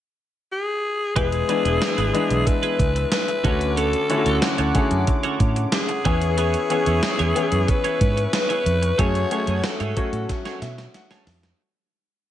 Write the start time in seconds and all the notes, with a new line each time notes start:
0.52 G#4
1.15 E1 E3 G#3 B3 E4 G#4 B4 E5 G#5 E6, kick, closed hi-hat
1.32 closed hi-hat
1.48 E3 G#3 B3 D4 E4 G#4 B4, closed hi-hat
1.65 E1 B3 E4 G#4 B4, closed hi-hat
1.81 muted clean electric guitar stroke, snare, closed hi-hat
1.98 G#1 B3 E4 G#4 B4, closed hi-hat
2.13 E3 G#3 B3 D4 E4 G#4 B4, closed hi-hat
2.30 B1, muted clean electric guitar stroke, closed hi-hat
2.46 B4, muted clean electric guitar stroke, kick, closed hi-hat
2.62 B3 E4 G#4 B4, closed hi-hat
2.79 C#2, muted clean electric guitar stroke, kick, closed hi-hat
2.96 muted clean electric guitar stroke, closed hi-hat
3.12 B4, muted clean electric guitar stroke, snare, closed hi-hat
3.28 muted clean electric guitar stroke, closed hi-hat
3.44 D2 D3 A3 C#4 F#4 A4 C#5 F#5 D6, kick, closed hi-hat
3.61 muted clean electric guitar stroke, closed hi-hat
3.77 C#4 F#4 A4 C#5, closed hi-hat
3.93 closed hi-hat
4.09 D3 A3 C#4 E4 F#4 A4 C#5, closed hi-hat
4.17 F#4
4.26 D2 C#4 F#4 A4 C#5, closed hi-hat
4.42 F#4, muted clean electric guitar stroke, snare, closed hi-hat
4.58 D2 C#4 F#4 A4 C#5, closed hi-hat
4.74 D3 A3 C#4 F#4 G#4 A4 C#5, kick, closed hi-hat
4.91 F#2, muted clean electric guitar stroke, closed hi-hat
5.07 muted clean electric guitar stroke, kick, closed hi-hat
5.23 C#4 F#4 A4 C#5, closed hi-hat
5.40 A2, kick, closed hi-hat
5.56 muted clean electric guitar stroke, closed hi-hat
5.72 G#4, muted clean electric guitar stroke, snare, closed hi-hat
5.88 muted clean electric guitar stroke, closed hi-hat
6.05 E2 E3 B3 C#4 E4 G#4 B4 C#5 E5 C#6, kick, closed hi-hat
6.21 muted clean electric guitar stroke, closed hi-hat
6.37 B3 E4 G#4 C#5, closed hi-hat
6.54 closed hi-hat
6.70 E3 B3 C#4 E4 G#4 C#5, closed hi-hat
6.86 E2 B3 E4 G#4 C#5, closed hi-hat
7.03 snare, closed hi-hat
7.19 E2 B3 E4 G#4 C#5, closed hi-hat
7.35 E3 B3 C#4 E4 G#4 C#5, closed hi-hat
7.52 F#2, muted clean electric guitar stroke, closed hi-hat
7.68 B4, muted clean electric guitar stroke, kick, closed hi-hat
7.84 B3 E4 G#4 C#5, closed hi-hat
8.01 G#2, kick, closed hi-hat
8.17 muted clean electric guitar stroke, closed hi-hat
8.33 B4, muted clean electric guitar stroke, snare, closed hi-hat
8.49 B3 E4 G#4 C#5, closed hi-hat
8.66 F2, muted clean electric guitar stroke, closed hi-hat
8.82 muted clean electric guitar stroke, closed hi-hat
8.98 F#2 F#3 A3 C#4 G#4 C#5 F#5, kick, closed hi-hat
9.15 closed hi-hat
9.31 F#3 A3 C#4 G#4 C#5, closed hi-hat
9.47 F#2 A3 C#4 G#4 C#5, closed hi-hat
9.64 A4, snare, closed hi-hat
9.80 G#2 A3 C#4 G#4 C#5, closed hi-hat
9.96 F#3 A3 C#4 F#4 G#4 C#5, kick, closed hi-hat
10.13 A2, muted clean electric guitar stroke, closed hi-hat
10.29 muted clean electric guitar stroke, kick, snare, closed hi-hat
10.45 A3 C#4 G#4 C#5, snare, closed hi-hat
10.62 B2 E5, muted clean electric guitar stroke, snare, closed hi-hat
10.78 muted clean electric guitar stroke, snare, closed hi-hat
10.94 F#5, muted clean electric guitar stroke, snare, closed hi-hat
11.11 A3 C#4 G#4 C#5 A5, snare, closed hi-hat
11.27 F2, muted clean electric guitar stroke, snare, open hi-hat
11.43 muted clean electric guitar stroke, snare, closed hi-hat